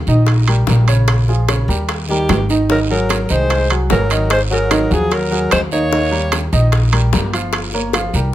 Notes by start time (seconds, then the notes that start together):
0.07 A#1 D#3 D#4 D#5, short guiro
0.27 high bongo, high timbale, long guiro
0.48 G3 G4 A#4, high timbale
0.67 A#1 G3 G4 A#4, high bongo, low bongo, short guiro
0.88 C#3 C#4 C#5, high timbale, short guiro
1.08 high bongo, high timbale, long guiro
1.28 F3 F4 G#4, high bongo
1.48 C#3 C#4 C#5, high bongo, high timbale, short guiro
1.68 D#2 G3 G4 A#4, short guiro
1.89 high bongo, high timbale, long guiro
2.08 D#3 G3 G4 A#4, high bongo
2.29 G#1, high bongo, low bongo, high timbale, low timbale, short guiro
2.49 D#3 D#4 D#5, high bongo, short guiro
2.69 D#3 F#3 D#4 A#4 D#5, high bongo, long guiro
2.89 F#3 F#4 G#4 A#4
3.09 high bongo, high timbale, short guiro
3.22 F#3 A#4
3.29 C2 D#3 G#3 D#4 C5 D#5, short guiro
3.50 high bongo, high timbale, long guiro
3.70 F#3 F#4 G#4, high timbale
3.90 G#1 F#3 F#4 G#4 A#4, high bongo, low bongo, low timbale, short guiro
4.10 D#3 D#4 D#5, high timbale, short guiro
4.30 G#3 C5, high bongo, high timbale, long guiro
4.50 F#3 F#4 G#4 A#4, high bongo
4.71 D#3 D#4 D#5, high bongo, high timbale, short guiro
4.90 D#2 F3 F#3 F#4 G#4, short guiro
5.11 F#3 A#4, high bongo, high timbale, long guiro
5.31 F#3 F#4 G#4, high bongo
5.51 D#2 G#3 C5, high bongo, low bongo, high timbale, short guiro
5.71 D#3 A#3 D#4 C#5 D#5, high bongo, short guiro
5.91 D#3 D#4 D#5, high bongo, long guiro
6.11 G3 G4 A#4
6.32 high bongo, high timbale, short guiro
6.52 A#1 D#3 D#4 D#5, short guiro
6.72 high bongo, high timbale, long guiro
6.92 G3 G4 A#4, high timbale
7.12 G1 G3 G4 A#4, high bongo, low bongo, short guiro
7.33 F3 F4 F5, high timbale, short guiro
7.53 high bongo, high timbale, long guiro
7.73 A#3 A#4 C#5, high bongo
7.93 F3 F4 F5, high bongo, high timbale, short guiro
8.13 C2 G3 G4 A#4, short guiro